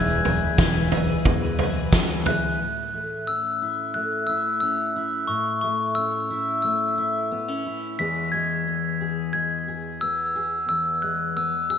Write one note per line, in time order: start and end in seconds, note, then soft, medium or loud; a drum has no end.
0.00 0.46 E1 loud
0.00 2.56 E2 medium
0.00 2.60 E2 medium
0.00 0.24 E3 medium
0.00 0.58 E3 medium
0.00 2.56 E3 medium
0.00 1.26 G#3 medium
0.00 1.58 B3 medium
0.00 2.21 B3 medium
0.00 0.25 E4 medium
0.00 2.22 E4 medium
0.00 0.26 G#4 medium
0.00 2.23 G#4 medium
0.00 0.26 B4 medium
0.00 2.23 E5 medium
0.00 1.89 G#6 medium
0.25 0.56 E3 soft
0.25 0.57 E4 medium
0.25 2.56 G#4 medium
0.25 0.58 G#4 medium
0.25 0.58 B4 medium
0.25 floor tom medium
0.58 1.13 E1 medium
0.58 0.90 E3 medium
0.58 1.93 E3 medium
0.58 0.91 E4 medium
0.58 0.92 G#4 medium
0.58 0.92 B4 medium
0.58 kick medium
0.58 snare medium
0.58 floor tom medium
0.91 1.08 E3 medium
0.91 1.09 E4 medium
0.91 1.09 G#4 medium
0.91 1.08 B4 medium
0.91 floor tom medium
1.09 1.43 E4 soft
1.09 1.42 G#4 medium
1.09 1.41 B4 soft
1.25 2.36 E2 loud
1.25 1.93 B2 medium
1.25 2.26 G#3 medium
1.25 kick loud
1.25 floor tom medium
1.42 1.58 E4 soft
1.42 1.60 G#4 medium
1.42 1.59 B4 medium
1.59 1.90 E3 medium
1.59 2.60 B3 medium
1.59 1.91 E4 medium
1.59 1.92 G#4 medium
1.59 1.92 B4 medium
1.59 floor tom medium
1.92 2.24 E3 medium
1.92 2.56 E3 medium
1.92 2.26 E4 medium
1.92 2.26 G#4 medium
1.92 2.27 B4 medium
1.92 kick loud
1.92 snare loud
1.92 floor tom medium
2.25 2.59 E3 medium
2.25 2.56 G#3 medium
2.25 2.59 B3 medium
2.25 2.60 E4 soft
2.25 2.60 E4 medium
2.25 2.60 G#4 soft
2.25 2.60 G#4 medium
2.25 2.61 B4 medium
2.25 2.60 E5 medium
2.25 3.30 F#6 loud
2.25 floor tom medium
2.60 5.27 A2 medium
2.94 3.95 A3 soft
3.27 4.61 C#4 soft
3.27 3.97 E6 medium
3.62 4.29 E4 soft
3.94 5.25 A3 soft
3.94 4.29 F#6 medium
4.27 4.96 E4 medium
4.27 4.59 E6 medium
4.60 5.25 C#4 soft
4.60 5.30 E6 medium
4.96 6.30 E4 soft
5.27 7.98 A2 medium
5.27 5.60 C#6 medium
5.61 6.63 A3 soft
5.61 5.97 C#6 medium
5.95 7.31 C#4 soft
5.95 6.61 E6 medium
6.30 6.97 E4 soft
6.62 7.95 A3 soft
6.62 7.26 E6 medium
6.98 7.65 E4 medium
7.32 7.48 B3 medium
7.48 7.99 C#4 soft
7.66 8.01 E4 soft
7.99 10.67 E2 medium
7.99 11.49 E3 soft
7.99 8.33 G#3 soft
7.99 8.67 B3 soft
7.99 9.01 G#4 medium
7.99 8.33 B6 medium
8.32 9.34 G#3 soft
8.32 9.32 G#6 medium
8.68 10.01 B3 soft
9.01 9.67 G#4 medium
9.33 10.65 G#3 soft
9.33 10.03 G#6 medium
9.68 10.34 G#4 soft
10.01 11.35 B3 soft
10.01 10.68 E6 medium
10.36 10.65 G#4 soft
10.69 11.78 E2 medium
10.69 11.03 E6 medium
11.02 11.78 G#3 soft
11.02 11.37 F#6 medium
11.36 11.78 B3 soft
11.36 11.69 E6 medium
11.70 11.78 G#4 soft
11.70 11.78 E6 medium